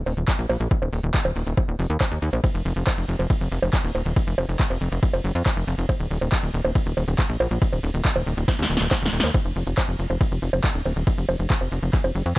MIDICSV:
0, 0, Header, 1, 3, 480
1, 0, Start_track
1, 0, Tempo, 431655
1, 791, Time_signature, 4, 2, 24, 8
1, 13775, End_track
2, 0, Start_track
2, 0, Title_t, "Analog synth bass"
2, 0, Program_c, 0, 38
2, 71, Note_on_c, 0, 27, 100
2, 157, Note_off_c, 0, 27, 0
2, 191, Note_on_c, 0, 27, 93
2, 277, Note_off_c, 0, 27, 0
2, 431, Note_on_c, 0, 34, 91
2, 517, Note_off_c, 0, 34, 0
2, 551, Note_on_c, 0, 34, 98
2, 637, Note_off_c, 0, 34, 0
2, 671, Note_on_c, 0, 34, 95
2, 757, Note_off_c, 0, 34, 0
2, 911, Note_on_c, 0, 27, 89
2, 997, Note_off_c, 0, 27, 0
2, 1031, Note_on_c, 0, 27, 103
2, 1117, Note_off_c, 0, 27, 0
2, 1151, Note_on_c, 0, 27, 92
2, 1237, Note_off_c, 0, 27, 0
2, 1391, Note_on_c, 0, 27, 93
2, 1477, Note_off_c, 0, 27, 0
2, 1511, Note_on_c, 0, 27, 95
2, 1597, Note_off_c, 0, 27, 0
2, 1631, Note_on_c, 0, 27, 91
2, 1717, Note_off_c, 0, 27, 0
2, 1871, Note_on_c, 0, 27, 88
2, 1957, Note_off_c, 0, 27, 0
2, 1991, Note_on_c, 0, 29, 106
2, 2077, Note_off_c, 0, 29, 0
2, 2111, Note_on_c, 0, 39, 95
2, 2197, Note_off_c, 0, 39, 0
2, 2351, Note_on_c, 0, 39, 92
2, 2437, Note_off_c, 0, 39, 0
2, 2471, Note_on_c, 0, 39, 102
2, 2557, Note_off_c, 0, 39, 0
2, 2591, Note_on_c, 0, 34, 95
2, 2677, Note_off_c, 0, 34, 0
2, 2831, Note_on_c, 0, 29, 89
2, 2917, Note_off_c, 0, 29, 0
2, 2951, Note_on_c, 0, 29, 103
2, 3037, Note_off_c, 0, 29, 0
2, 3071, Note_on_c, 0, 29, 88
2, 3157, Note_off_c, 0, 29, 0
2, 3311, Note_on_c, 0, 29, 91
2, 3397, Note_off_c, 0, 29, 0
2, 3431, Note_on_c, 0, 29, 98
2, 3517, Note_off_c, 0, 29, 0
2, 3551, Note_on_c, 0, 29, 95
2, 3637, Note_off_c, 0, 29, 0
2, 3790, Note_on_c, 0, 29, 87
2, 3877, Note_off_c, 0, 29, 0
2, 3910, Note_on_c, 0, 29, 98
2, 3997, Note_off_c, 0, 29, 0
2, 4030, Note_on_c, 0, 29, 93
2, 4117, Note_off_c, 0, 29, 0
2, 4270, Note_on_c, 0, 27, 94
2, 4357, Note_off_c, 0, 27, 0
2, 4391, Note_on_c, 0, 27, 97
2, 4477, Note_off_c, 0, 27, 0
2, 4510, Note_on_c, 0, 27, 95
2, 4597, Note_off_c, 0, 27, 0
2, 4751, Note_on_c, 0, 29, 90
2, 4837, Note_off_c, 0, 29, 0
2, 4871, Note_on_c, 0, 29, 102
2, 4957, Note_off_c, 0, 29, 0
2, 4990, Note_on_c, 0, 29, 90
2, 5077, Note_off_c, 0, 29, 0
2, 5230, Note_on_c, 0, 29, 93
2, 5317, Note_off_c, 0, 29, 0
2, 5350, Note_on_c, 0, 29, 103
2, 5436, Note_off_c, 0, 29, 0
2, 5470, Note_on_c, 0, 29, 94
2, 5557, Note_off_c, 0, 29, 0
2, 5710, Note_on_c, 0, 29, 82
2, 5797, Note_off_c, 0, 29, 0
2, 5830, Note_on_c, 0, 30, 105
2, 5917, Note_off_c, 0, 30, 0
2, 5950, Note_on_c, 0, 41, 92
2, 6037, Note_off_c, 0, 41, 0
2, 6190, Note_on_c, 0, 29, 93
2, 6277, Note_off_c, 0, 29, 0
2, 6310, Note_on_c, 0, 29, 96
2, 6396, Note_off_c, 0, 29, 0
2, 6430, Note_on_c, 0, 29, 96
2, 6516, Note_off_c, 0, 29, 0
2, 6670, Note_on_c, 0, 27, 90
2, 6757, Note_off_c, 0, 27, 0
2, 6790, Note_on_c, 0, 27, 103
2, 6876, Note_off_c, 0, 27, 0
2, 6910, Note_on_c, 0, 27, 93
2, 6996, Note_off_c, 0, 27, 0
2, 7150, Note_on_c, 0, 27, 89
2, 7237, Note_off_c, 0, 27, 0
2, 7270, Note_on_c, 0, 27, 101
2, 7356, Note_off_c, 0, 27, 0
2, 7390, Note_on_c, 0, 27, 92
2, 7477, Note_off_c, 0, 27, 0
2, 7630, Note_on_c, 0, 27, 84
2, 7716, Note_off_c, 0, 27, 0
2, 7750, Note_on_c, 0, 27, 102
2, 7837, Note_off_c, 0, 27, 0
2, 7870, Note_on_c, 0, 27, 94
2, 7957, Note_off_c, 0, 27, 0
2, 8110, Note_on_c, 0, 34, 87
2, 8197, Note_off_c, 0, 34, 0
2, 8231, Note_on_c, 0, 34, 104
2, 8317, Note_off_c, 0, 34, 0
2, 8351, Note_on_c, 0, 34, 95
2, 8437, Note_off_c, 0, 34, 0
2, 8591, Note_on_c, 0, 27, 90
2, 8677, Note_off_c, 0, 27, 0
2, 8711, Note_on_c, 0, 27, 106
2, 8797, Note_off_c, 0, 27, 0
2, 8831, Note_on_c, 0, 27, 93
2, 8917, Note_off_c, 0, 27, 0
2, 9071, Note_on_c, 0, 27, 94
2, 9157, Note_off_c, 0, 27, 0
2, 9191, Note_on_c, 0, 27, 96
2, 9277, Note_off_c, 0, 27, 0
2, 9311, Note_on_c, 0, 27, 93
2, 9397, Note_off_c, 0, 27, 0
2, 9551, Note_on_c, 0, 39, 85
2, 9637, Note_off_c, 0, 39, 0
2, 9671, Note_on_c, 0, 27, 101
2, 9757, Note_off_c, 0, 27, 0
2, 9791, Note_on_c, 0, 27, 96
2, 9877, Note_off_c, 0, 27, 0
2, 10031, Note_on_c, 0, 27, 91
2, 10117, Note_off_c, 0, 27, 0
2, 10150, Note_on_c, 0, 27, 99
2, 10237, Note_off_c, 0, 27, 0
2, 10271, Note_on_c, 0, 39, 90
2, 10357, Note_off_c, 0, 39, 0
2, 10511, Note_on_c, 0, 29, 91
2, 10597, Note_off_c, 0, 29, 0
2, 10630, Note_on_c, 0, 29, 101
2, 10717, Note_off_c, 0, 29, 0
2, 10751, Note_on_c, 0, 29, 88
2, 10837, Note_off_c, 0, 29, 0
2, 10990, Note_on_c, 0, 29, 93
2, 11077, Note_off_c, 0, 29, 0
2, 11111, Note_on_c, 0, 29, 100
2, 11197, Note_off_c, 0, 29, 0
2, 11231, Note_on_c, 0, 29, 95
2, 11317, Note_off_c, 0, 29, 0
2, 11471, Note_on_c, 0, 29, 85
2, 11557, Note_off_c, 0, 29, 0
2, 11591, Note_on_c, 0, 29, 101
2, 11677, Note_off_c, 0, 29, 0
2, 11711, Note_on_c, 0, 29, 98
2, 11797, Note_off_c, 0, 29, 0
2, 11951, Note_on_c, 0, 27, 90
2, 12037, Note_off_c, 0, 27, 0
2, 12071, Note_on_c, 0, 27, 97
2, 12157, Note_off_c, 0, 27, 0
2, 12191, Note_on_c, 0, 27, 94
2, 12277, Note_off_c, 0, 27, 0
2, 12430, Note_on_c, 0, 29, 90
2, 12517, Note_off_c, 0, 29, 0
2, 12551, Note_on_c, 0, 29, 99
2, 12637, Note_off_c, 0, 29, 0
2, 12671, Note_on_c, 0, 29, 87
2, 12757, Note_off_c, 0, 29, 0
2, 12911, Note_on_c, 0, 29, 91
2, 12997, Note_off_c, 0, 29, 0
2, 13031, Note_on_c, 0, 29, 100
2, 13117, Note_off_c, 0, 29, 0
2, 13151, Note_on_c, 0, 29, 95
2, 13237, Note_off_c, 0, 29, 0
2, 13391, Note_on_c, 0, 29, 90
2, 13477, Note_off_c, 0, 29, 0
2, 13511, Note_on_c, 0, 30, 96
2, 13597, Note_off_c, 0, 30, 0
2, 13631, Note_on_c, 0, 41, 92
2, 13717, Note_off_c, 0, 41, 0
2, 13775, End_track
3, 0, Start_track
3, 0, Title_t, "Drums"
3, 70, Note_on_c, 9, 46, 116
3, 70, Note_on_c, 9, 60, 40
3, 181, Note_off_c, 9, 46, 0
3, 181, Note_off_c, 9, 60, 0
3, 190, Note_on_c, 9, 42, 66
3, 301, Note_off_c, 9, 42, 0
3, 311, Note_on_c, 9, 36, 127
3, 311, Note_on_c, 9, 39, 127
3, 311, Note_on_c, 9, 42, 68
3, 422, Note_off_c, 9, 36, 0
3, 422, Note_off_c, 9, 39, 0
3, 422, Note_off_c, 9, 42, 0
3, 550, Note_on_c, 9, 46, 112
3, 550, Note_on_c, 9, 60, 76
3, 661, Note_off_c, 9, 46, 0
3, 661, Note_off_c, 9, 60, 0
3, 670, Note_on_c, 9, 42, 64
3, 782, Note_off_c, 9, 42, 0
3, 790, Note_on_c, 9, 42, 66
3, 791, Note_on_c, 9, 36, 127
3, 901, Note_off_c, 9, 42, 0
3, 902, Note_off_c, 9, 36, 0
3, 911, Note_on_c, 9, 60, 44
3, 1022, Note_off_c, 9, 60, 0
3, 1030, Note_on_c, 9, 46, 117
3, 1141, Note_off_c, 9, 46, 0
3, 1150, Note_on_c, 9, 42, 66
3, 1261, Note_off_c, 9, 42, 0
3, 1271, Note_on_c, 9, 36, 126
3, 1271, Note_on_c, 9, 39, 122
3, 1271, Note_on_c, 9, 42, 65
3, 1382, Note_off_c, 9, 36, 0
3, 1382, Note_off_c, 9, 39, 0
3, 1382, Note_off_c, 9, 42, 0
3, 1391, Note_on_c, 9, 60, 82
3, 1502, Note_off_c, 9, 60, 0
3, 1511, Note_on_c, 9, 46, 105
3, 1622, Note_off_c, 9, 46, 0
3, 1631, Note_on_c, 9, 42, 62
3, 1742, Note_off_c, 9, 42, 0
3, 1751, Note_on_c, 9, 36, 127
3, 1751, Note_on_c, 9, 42, 63
3, 1751, Note_on_c, 9, 60, 43
3, 1862, Note_off_c, 9, 36, 0
3, 1862, Note_off_c, 9, 42, 0
3, 1862, Note_off_c, 9, 60, 0
3, 1991, Note_on_c, 9, 46, 112
3, 2102, Note_off_c, 9, 46, 0
3, 2111, Note_on_c, 9, 42, 65
3, 2222, Note_off_c, 9, 42, 0
3, 2231, Note_on_c, 9, 36, 127
3, 2231, Note_on_c, 9, 39, 126
3, 2231, Note_on_c, 9, 42, 68
3, 2231, Note_on_c, 9, 60, 86
3, 2342, Note_off_c, 9, 36, 0
3, 2342, Note_off_c, 9, 39, 0
3, 2342, Note_off_c, 9, 42, 0
3, 2342, Note_off_c, 9, 60, 0
3, 2471, Note_on_c, 9, 46, 114
3, 2582, Note_off_c, 9, 46, 0
3, 2591, Note_on_c, 9, 42, 64
3, 2591, Note_on_c, 9, 60, 41
3, 2702, Note_off_c, 9, 42, 0
3, 2702, Note_off_c, 9, 60, 0
3, 2711, Note_on_c, 9, 36, 127
3, 2711, Note_on_c, 9, 42, 65
3, 2711, Note_on_c, 9, 51, 69
3, 2711, Note_on_c, 9, 60, 41
3, 2822, Note_off_c, 9, 36, 0
3, 2822, Note_off_c, 9, 42, 0
3, 2822, Note_off_c, 9, 51, 0
3, 2822, Note_off_c, 9, 60, 0
3, 2951, Note_on_c, 9, 46, 109
3, 3062, Note_off_c, 9, 46, 0
3, 3071, Note_on_c, 9, 42, 65
3, 3182, Note_off_c, 9, 42, 0
3, 3191, Note_on_c, 9, 36, 127
3, 3191, Note_on_c, 9, 39, 118
3, 3191, Note_on_c, 9, 42, 68
3, 3191, Note_on_c, 9, 51, 72
3, 3191, Note_on_c, 9, 60, 83
3, 3302, Note_off_c, 9, 36, 0
3, 3302, Note_off_c, 9, 39, 0
3, 3302, Note_off_c, 9, 42, 0
3, 3302, Note_off_c, 9, 51, 0
3, 3302, Note_off_c, 9, 60, 0
3, 3431, Note_on_c, 9, 46, 106
3, 3542, Note_off_c, 9, 46, 0
3, 3551, Note_on_c, 9, 42, 63
3, 3551, Note_on_c, 9, 60, 42
3, 3662, Note_off_c, 9, 42, 0
3, 3662, Note_off_c, 9, 60, 0
3, 3671, Note_on_c, 9, 36, 118
3, 3671, Note_on_c, 9, 42, 68
3, 3671, Note_on_c, 9, 51, 73
3, 3782, Note_off_c, 9, 36, 0
3, 3782, Note_off_c, 9, 42, 0
3, 3782, Note_off_c, 9, 51, 0
3, 3911, Note_on_c, 9, 46, 108
3, 4022, Note_off_c, 9, 46, 0
3, 4031, Note_on_c, 9, 42, 66
3, 4031, Note_on_c, 9, 60, 83
3, 4142, Note_off_c, 9, 42, 0
3, 4142, Note_off_c, 9, 60, 0
3, 4151, Note_on_c, 9, 36, 122
3, 4151, Note_on_c, 9, 39, 114
3, 4151, Note_on_c, 9, 42, 66
3, 4151, Note_on_c, 9, 51, 73
3, 4262, Note_off_c, 9, 36, 0
3, 4262, Note_off_c, 9, 39, 0
3, 4262, Note_off_c, 9, 42, 0
3, 4262, Note_off_c, 9, 51, 0
3, 4391, Note_on_c, 9, 46, 104
3, 4391, Note_on_c, 9, 60, 42
3, 4502, Note_off_c, 9, 46, 0
3, 4502, Note_off_c, 9, 60, 0
3, 4510, Note_on_c, 9, 42, 67
3, 4621, Note_off_c, 9, 42, 0
3, 4630, Note_on_c, 9, 36, 115
3, 4630, Note_on_c, 9, 42, 67
3, 4630, Note_on_c, 9, 51, 74
3, 4742, Note_off_c, 9, 36, 0
3, 4742, Note_off_c, 9, 42, 0
3, 4742, Note_off_c, 9, 51, 0
3, 4870, Note_on_c, 9, 46, 109
3, 4870, Note_on_c, 9, 60, 87
3, 4982, Note_off_c, 9, 46, 0
3, 4982, Note_off_c, 9, 60, 0
3, 4990, Note_on_c, 9, 42, 68
3, 5102, Note_off_c, 9, 42, 0
3, 5110, Note_on_c, 9, 39, 116
3, 5110, Note_on_c, 9, 42, 70
3, 5110, Note_on_c, 9, 51, 73
3, 5111, Note_on_c, 9, 36, 120
3, 5221, Note_off_c, 9, 39, 0
3, 5221, Note_off_c, 9, 42, 0
3, 5221, Note_off_c, 9, 51, 0
3, 5222, Note_off_c, 9, 36, 0
3, 5230, Note_on_c, 9, 60, 39
3, 5341, Note_off_c, 9, 60, 0
3, 5350, Note_on_c, 9, 46, 98
3, 5462, Note_off_c, 9, 46, 0
3, 5470, Note_on_c, 9, 42, 67
3, 5581, Note_off_c, 9, 42, 0
3, 5590, Note_on_c, 9, 36, 117
3, 5590, Note_on_c, 9, 42, 69
3, 5590, Note_on_c, 9, 51, 75
3, 5701, Note_off_c, 9, 42, 0
3, 5701, Note_off_c, 9, 51, 0
3, 5702, Note_off_c, 9, 36, 0
3, 5710, Note_on_c, 9, 60, 82
3, 5821, Note_off_c, 9, 60, 0
3, 5830, Note_on_c, 9, 46, 106
3, 5941, Note_off_c, 9, 46, 0
3, 5950, Note_on_c, 9, 42, 70
3, 6062, Note_off_c, 9, 42, 0
3, 6070, Note_on_c, 9, 36, 121
3, 6070, Note_on_c, 9, 39, 118
3, 6070, Note_on_c, 9, 42, 67
3, 6070, Note_on_c, 9, 51, 70
3, 6070, Note_on_c, 9, 60, 43
3, 6181, Note_off_c, 9, 39, 0
3, 6181, Note_off_c, 9, 42, 0
3, 6181, Note_off_c, 9, 51, 0
3, 6181, Note_off_c, 9, 60, 0
3, 6182, Note_off_c, 9, 36, 0
3, 6310, Note_on_c, 9, 46, 104
3, 6421, Note_off_c, 9, 46, 0
3, 6430, Note_on_c, 9, 42, 68
3, 6542, Note_off_c, 9, 42, 0
3, 6550, Note_on_c, 9, 36, 124
3, 6550, Note_on_c, 9, 42, 73
3, 6550, Note_on_c, 9, 51, 74
3, 6550, Note_on_c, 9, 60, 87
3, 6661, Note_off_c, 9, 42, 0
3, 6661, Note_off_c, 9, 51, 0
3, 6661, Note_off_c, 9, 60, 0
3, 6662, Note_off_c, 9, 36, 0
3, 6790, Note_on_c, 9, 46, 102
3, 6901, Note_off_c, 9, 46, 0
3, 6910, Note_on_c, 9, 42, 69
3, 6910, Note_on_c, 9, 60, 42
3, 7021, Note_off_c, 9, 42, 0
3, 7021, Note_off_c, 9, 60, 0
3, 7030, Note_on_c, 9, 36, 115
3, 7030, Note_on_c, 9, 39, 120
3, 7030, Note_on_c, 9, 42, 73
3, 7030, Note_on_c, 9, 51, 75
3, 7141, Note_off_c, 9, 39, 0
3, 7141, Note_off_c, 9, 42, 0
3, 7141, Note_off_c, 9, 51, 0
3, 7142, Note_off_c, 9, 36, 0
3, 7270, Note_on_c, 9, 46, 98
3, 7381, Note_off_c, 9, 46, 0
3, 7390, Note_on_c, 9, 42, 65
3, 7390, Note_on_c, 9, 60, 80
3, 7502, Note_off_c, 9, 42, 0
3, 7502, Note_off_c, 9, 60, 0
3, 7510, Note_on_c, 9, 36, 115
3, 7510, Note_on_c, 9, 42, 71
3, 7510, Note_on_c, 9, 51, 73
3, 7622, Note_off_c, 9, 36, 0
3, 7622, Note_off_c, 9, 42, 0
3, 7622, Note_off_c, 9, 51, 0
3, 7751, Note_on_c, 9, 46, 108
3, 7751, Note_on_c, 9, 60, 43
3, 7862, Note_off_c, 9, 46, 0
3, 7862, Note_off_c, 9, 60, 0
3, 7871, Note_on_c, 9, 42, 73
3, 7982, Note_off_c, 9, 42, 0
3, 7990, Note_on_c, 9, 36, 119
3, 7991, Note_on_c, 9, 39, 121
3, 7991, Note_on_c, 9, 42, 73
3, 7991, Note_on_c, 9, 51, 74
3, 8102, Note_off_c, 9, 36, 0
3, 8102, Note_off_c, 9, 39, 0
3, 8102, Note_off_c, 9, 42, 0
3, 8102, Note_off_c, 9, 51, 0
3, 8231, Note_on_c, 9, 46, 104
3, 8231, Note_on_c, 9, 60, 80
3, 8342, Note_off_c, 9, 46, 0
3, 8342, Note_off_c, 9, 60, 0
3, 8351, Note_on_c, 9, 42, 72
3, 8462, Note_off_c, 9, 42, 0
3, 8471, Note_on_c, 9, 36, 126
3, 8471, Note_on_c, 9, 42, 73
3, 8471, Note_on_c, 9, 51, 73
3, 8582, Note_off_c, 9, 36, 0
3, 8582, Note_off_c, 9, 42, 0
3, 8582, Note_off_c, 9, 51, 0
3, 8591, Note_on_c, 9, 60, 42
3, 8702, Note_off_c, 9, 60, 0
3, 8711, Note_on_c, 9, 46, 111
3, 8822, Note_off_c, 9, 46, 0
3, 8831, Note_on_c, 9, 42, 75
3, 8942, Note_off_c, 9, 42, 0
3, 8950, Note_on_c, 9, 36, 115
3, 8951, Note_on_c, 9, 39, 121
3, 8951, Note_on_c, 9, 42, 74
3, 8951, Note_on_c, 9, 51, 74
3, 9062, Note_off_c, 9, 36, 0
3, 9062, Note_off_c, 9, 39, 0
3, 9062, Note_off_c, 9, 42, 0
3, 9062, Note_off_c, 9, 51, 0
3, 9071, Note_on_c, 9, 60, 77
3, 9182, Note_off_c, 9, 60, 0
3, 9191, Note_on_c, 9, 46, 98
3, 9302, Note_off_c, 9, 46, 0
3, 9311, Note_on_c, 9, 42, 70
3, 9422, Note_off_c, 9, 42, 0
3, 9431, Note_on_c, 9, 36, 119
3, 9431, Note_on_c, 9, 38, 72
3, 9431, Note_on_c, 9, 42, 73
3, 9431, Note_on_c, 9, 51, 72
3, 9431, Note_on_c, 9, 60, 42
3, 9542, Note_off_c, 9, 36, 0
3, 9542, Note_off_c, 9, 38, 0
3, 9542, Note_off_c, 9, 42, 0
3, 9542, Note_off_c, 9, 51, 0
3, 9542, Note_off_c, 9, 60, 0
3, 9591, Note_on_c, 9, 38, 78
3, 9671, Note_on_c, 9, 46, 105
3, 9702, Note_off_c, 9, 38, 0
3, 9751, Note_on_c, 9, 38, 81
3, 9782, Note_off_c, 9, 46, 0
3, 9791, Note_on_c, 9, 42, 72
3, 9862, Note_off_c, 9, 38, 0
3, 9902, Note_off_c, 9, 42, 0
3, 9911, Note_on_c, 9, 36, 115
3, 9911, Note_on_c, 9, 38, 93
3, 9911, Note_on_c, 9, 39, 127
3, 9911, Note_on_c, 9, 42, 70
3, 9911, Note_on_c, 9, 51, 73
3, 9911, Note_on_c, 9, 60, 84
3, 10022, Note_off_c, 9, 36, 0
3, 10022, Note_off_c, 9, 38, 0
3, 10022, Note_off_c, 9, 39, 0
3, 10022, Note_off_c, 9, 42, 0
3, 10022, Note_off_c, 9, 51, 0
3, 10022, Note_off_c, 9, 60, 0
3, 10071, Note_on_c, 9, 38, 101
3, 10150, Note_on_c, 9, 46, 103
3, 10182, Note_off_c, 9, 38, 0
3, 10230, Note_on_c, 9, 38, 103
3, 10262, Note_off_c, 9, 46, 0
3, 10270, Note_on_c, 9, 42, 68
3, 10270, Note_on_c, 9, 60, 41
3, 10341, Note_off_c, 9, 38, 0
3, 10382, Note_off_c, 9, 42, 0
3, 10382, Note_off_c, 9, 60, 0
3, 10391, Note_on_c, 9, 36, 127
3, 10391, Note_on_c, 9, 42, 71
3, 10391, Note_on_c, 9, 51, 68
3, 10391, Note_on_c, 9, 60, 39
3, 10502, Note_off_c, 9, 36, 0
3, 10502, Note_off_c, 9, 42, 0
3, 10502, Note_off_c, 9, 51, 0
3, 10502, Note_off_c, 9, 60, 0
3, 10630, Note_on_c, 9, 46, 111
3, 10742, Note_off_c, 9, 46, 0
3, 10750, Note_on_c, 9, 42, 68
3, 10862, Note_off_c, 9, 42, 0
3, 10871, Note_on_c, 9, 36, 119
3, 10871, Note_on_c, 9, 39, 127
3, 10871, Note_on_c, 9, 42, 73
3, 10871, Note_on_c, 9, 51, 72
3, 10871, Note_on_c, 9, 60, 78
3, 10982, Note_off_c, 9, 36, 0
3, 10982, Note_off_c, 9, 39, 0
3, 10982, Note_off_c, 9, 42, 0
3, 10982, Note_off_c, 9, 51, 0
3, 10982, Note_off_c, 9, 60, 0
3, 11111, Note_on_c, 9, 46, 105
3, 11222, Note_off_c, 9, 46, 0
3, 11231, Note_on_c, 9, 42, 67
3, 11231, Note_on_c, 9, 60, 37
3, 11342, Note_off_c, 9, 42, 0
3, 11342, Note_off_c, 9, 60, 0
3, 11351, Note_on_c, 9, 36, 124
3, 11351, Note_on_c, 9, 42, 72
3, 11351, Note_on_c, 9, 51, 73
3, 11462, Note_off_c, 9, 36, 0
3, 11462, Note_off_c, 9, 42, 0
3, 11462, Note_off_c, 9, 51, 0
3, 11590, Note_on_c, 9, 46, 110
3, 11702, Note_off_c, 9, 46, 0
3, 11711, Note_on_c, 9, 42, 70
3, 11711, Note_on_c, 9, 60, 81
3, 11822, Note_off_c, 9, 42, 0
3, 11822, Note_off_c, 9, 60, 0
3, 11831, Note_on_c, 9, 36, 124
3, 11831, Note_on_c, 9, 39, 127
3, 11831, Note_on_c, 9, 42, 69
3, 11831, Note_on_c, 9, 51, 68
3, 11942, Note_off_c, 9, 36, 0
3, 11942, Note_off_c, 9, 39, 0
3, 11942, Note_off_c, 9, 42, 0
3, 11942, Note_off_c, 9, 51, 0
3, 12071, Note_on_c, 9, 46, 107
3, 12071, Note_on_c, 9, 60, 39
3, 12182, Note_off_c, 9, 46, 0
3, 12182, Note_off_c, 9, 60, 0
3, 12191, Note_on_c, 9, 42, 72
3, 12302, Note_off_c, 9, 42, 0
3, 12310, Note_on_c, 9, 36, 124
3, 12311, Note_on_c, 9, 42, 71
3, 12311, Note_on_c, 9, 51, 71
3, 12422, Note_off_c, 9, 36, 0
3, 12422, Note_off_c, 9, 42, 0
3, 12422, Note_off_c, 9, 51, 0
3, 12550, Note_on_c, 9, 46, 114
3, 12550, Note_on_c, 9, 60, 78
3, 12662, Note_off_c, 9, 46, 0
3, 12662, Note_off_c, 9, 60, 0
3, 12670, Note_on_c, 9, 42, 70
3, 12782, Note_off_c, 9, 42, 0
3, 12790, Note_on_c, 9, 36, 122
3, 12791, Note_on_c, 9, 39, 127
3, 12791, Note_on_c, 9, 42, 69
3, 12791, Note_on_c, 9, 51, 68
3, 12902, Note_off_c, 9, 36, 0
3, 12902, Note_off_c, 9, 39, 0
3, 12902, Note_off_c, 9, 42, 0
3, 12902, Note_off_c, 9, 51, 0
3, 12911, Note_on_c, 9, 60, 37
3, 13022, Note_off_c, 9, 60, 0
3, 13031, Note_on_c, 9, 46, 108
3, 13142, Note_off_c, 9, 46, 0
3, 13151, Note_on_c, 9, 42, 63
3, 13262, Note_off_c, 9, 42, 0
3, 13270, Note_on_c, 9, 36, 122
3, 13271, Note_on_c, 9, 39, 40
3, 13271, Note_on_c, 9, 42, 73
3, 13271, Note_on_c, 9, 51, 64
3, 13382, Note_off_c, 9, 36, 0
3, 13382, Note_off_c, 9, 39, 0
3, 13382, Note_off_c, 9, 42, 0
3, 13382, Note_off_c, 9, 51, 0
3, 13391, Note_on_c, 9, 60, 77
3, 13502, Note_off_c, 9, 60, 0
3, 13511, Note_on_c, 9, 46, 108
3, 13622, Note_off_c, 9, 46, 0
3, 13631, Note_on_c, 9, 42, 70
3, 13742, Note_off_c, 9, 42, 0
3, 13775, End_track
0, 0, End_of_file